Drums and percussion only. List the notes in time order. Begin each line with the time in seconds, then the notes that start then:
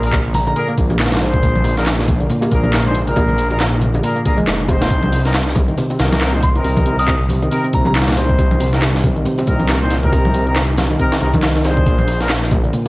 0.03 closed hi-hat, open hi-hat
0.12 kick, clap, closed hi-hat, high bongo
0.34 closed hi-hat, open hi-hat, high conga, low conga
0.47 closed hi-hat, high bongo
0.56 closed hi-hat
0.68 closed hi-hat
0.77 kick, closed hi-hat
0.90 closed hi-hat, high bongo, high conga
0.99 snare, clap, closed hi-hat
1.06 snare, closed hi-hat
1.12 snare, closed hi-hat
1.17 snare, closed hi-hat
1.21 snare, closed hi-hat, high bongo
1.33 kick, closed hi-hat
1.43 kick, closed hi-hat
1.55 closed hi-hat, high conga
1.64 closed hi-hat, open hi-hat, high bongo
1.77 snare, closed hi-hat
1.86 snare, clap, closed hi-hat
1.99 snare, high bongo
2.07 kick, closed hi-hat, high conga, low conga
2.20 closed hi-hat
2.29 closed hi-hat, low conga
2.42 closed hi-hat, high bongo
2.51 kick, closed hi-hat
2.64 closed hi-hat, high conga
2.72 snare, clap, closed hi-hat, high bongo
2.85 closed hi-hat
2.95 closed hi-hat
3.07 closed hi-hat, low conga
3.16 kick, closed hi-hat, high bongo
3.29 closed hi-hat, high conga
3.38 closed hi-hat
3.51 closed hi-hat, high bongo
3.60 snare, clap, closed hi-hat
3.73 closed hi-hat
3.81 closed hi-hat, high conga, low conga
3.94 closed hi-hat, high bongo
4.03 closed hi-hat
4.16 closed hi-hat
4.25 kick, closed hi-hat, high bongo
4.38 closed hi-hat, high conga
4.47 snare, clap, closed hi-hat
4.60 closed hi-hat
4.68 kick, closed hi-hat, high bongo
4.81 snare, closed hi-hat
4.91 kick, closed hi-hat
5.03 closed hi-hat, high conga
5.12 closed hi-hat, open hi-hat, high bongo
5.25 snare, closed hi-hat
5.34 snare, clap, closed hi-hat
5.47 snare
5.55 kick, closed hi-hat, high bongo, high conga, low conga
5.68 closed hi-hat
5.77 closed hi-hat, low conga
5.90 closed hi-hat, high bongo
5.99 snare, closed hi-hat
6.12 snare, closed hi-hat, high conga
6.21 snare, clap, closed hi-hat
6.33 closed hi-hat, high bongo
6.43 kick, closed hi-hat
6.55 closed hi-hat, low conga
6.64 closed hi-hat, open hi-hat, high bongo
6.77 kick, closed hi-hat, high conga
6.86 closed hi-hat
6.99 closed hi-hat, open hi-hat
7.07 kick, clap, closed hi-hat, high bongo
7.29 closed hi-hat, open hi-hat, high conga, low conga
7.42 closed hi-hat, high bongo
7.51 closed hi-hat
7.64 closed hi-hat
7.73 kick, closed hi-hat
7.85 closed hi-hat, high bongo, high conga
7.95 snare, clap, closed hi-hat
8.02 snare, closed hi-hat
8.08 snare, closed hi-hat
8.12 snare, closed hi-hat
8.17 snare, closed hi-hat, high bongo
8.29 kick, closed hi-hat
8.39 kick, closed hi-hat
8.51 closed hi-hat, high conga
8.60 closed hi-hat, open hi-hat, high bongo
8.73 snare, closed hi-hat
8.82 snare, clap, closed hi-hat
8.95 snare, high bongo
9.03 kick, closed hi-hat, high conga, low conga
9.16 closed hi-hat
9.25 closed hi-hat, low conga
9.38 closed hi-hat, high bongo
9.47 kick, closed hi-hat
9.59 closed hi-hat, high conga
9.69 snare, clap, closed hi-hat, high bongo
9.81 closed hi-hat
9.90 snare, closed hi-hat
10.03 kick, closed hi-hat, low conga
10.12 kick, closed hi-hat, high bongo
10.25 closed hi-hat, high conga
10.34 closed hi-hat
10.46 closed hi-hat, high bongo
10.56 snare, clap, closed hi-hat
10.77 snare, closed hi-hat, high conga, low conga
10.90 closed hi-hat, high bongo
10.99 kick, closed hi-hat
11.12 snare, closed hi-hat
11.21 closed hi-hat, high bongo
11.33 kick, closed hi-hat, high conga
11.42 snare, clap, closed hi-hat
11.55 snare, closed hi-hat
11.64 snare, closed hi-hat, high bongo
11.77 kick, closed hi-hat
11.86 kick, closed hi-hat
11.99 closed hi-hat, high conga
12.08 closed hi-hat, open hi-hat, high bongo
12.20 snare, closed hi-hat
12.29 snare, clap, closed hi-hat
12.42 snare
12.51 kick, closed hi-hat, high bongo, high conga, low conga
12.64 closed hi-hat
12.73 closed hi-hat, low conga